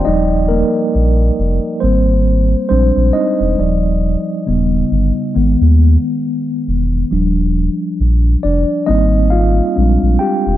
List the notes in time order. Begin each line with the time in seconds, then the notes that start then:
Already playing: G5
0.05 D#1 F3 G3 D#4 D5 D#5
0.48 A#3 A#4
0.95 A#1
1.39 F1
1.80 G#1 G3 A#3 C4 C5
2.69 A#1 G3 G#3 C4 D4 C5
2.97 A#1
3.13 D#4 D#5
3.41 E1
3.58 D#1 F3 G3 D5
4.46 D#1 C#3 G3 B3
4.92 G1
5.34 G#1 D#3 G#3 B3
5.61 D#2
6.68 E1
7.11 D#1 F3 G3 D4
8.00 A#1
8.43 F1 D4 D5
8.87 G#1 G3 A#3 C4 D#4 D#5
9.30 F4 F5
9.76 A#1 G3 G#3 C4 D4
10.03 A#1
10.19 G4 G5
10.47 E1